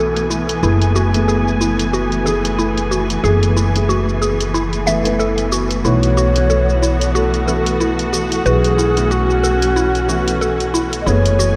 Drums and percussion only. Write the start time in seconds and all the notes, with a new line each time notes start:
0.16 closed hi-hat, shaker
0.31 shaker
0.49 closed hi-hat, shaker
0.63 shaker
0.82 closed hi-hat, shaker
0.96 shaker
1.14 closed hi-hat, shaker
1.29 shaker
1.48 shaker
1.61 shaker
1.79 closed hi-hat, shaker
1.94 shaker
2.12 closed hi-hat, shaker
2.26 shaker
2.45 closed hi-hat, shaker
2.59 shaker
2.78 closed hi-hat, shaker
2.92 shaker
3.10 closed hi-hat, shaker
3.25 shaker
3.43 closed hi-hat, shaker
3.57 shaker
3.76 closed hi-hat, shaker
3.90 shaker
4.09 shaker
4.22 shaker
4.41 closed hi-hat, shaker
4.55 shaker
4.73 closed hi-hat, shaker
4.87 shaker
5.05 closed hi-hat, shaker
5.20 shaker
5.38 closed hi-hat, shaker
5.52 shaker
5.71 closed hi-hat, shaker
5.85 shaker
6.03 closed hi-hat, shaker
6.18 shaker
6.36 closed hi-hat, shaker
6.50 shaker
6.69 shaker
6.83 shaker
7.01 closed hi-hat, shaker
7.16 shaker
7.34 closed hi-hat, shaker
7.48 shaker
7.66 closed hi-hat, shaker
7.81 shaker
7.99 closed hi-hat, shaker
8.14 shaker
8.32 closed hi-hat, shaker
8.46 shaker
8.64 closed hi-hat, shaker
8.79 shaker
8.97 closed hi-hat, shaker
9.11 shaker
9.30 shaker
9.44 shaker
9.62 closed hi-hat, shaker
9.77 shaker
9.95 closed hi-hat, shaker
10.09 shaker
10.28 closed hi-hat, shaker
10.42 shaker
10.60 closed hi-hat, shaker
10.75 shaker
10.93 closed hi-hat, shaker
11.07 shaker
11.26 closed hi-hat, shaker
11.40 shaker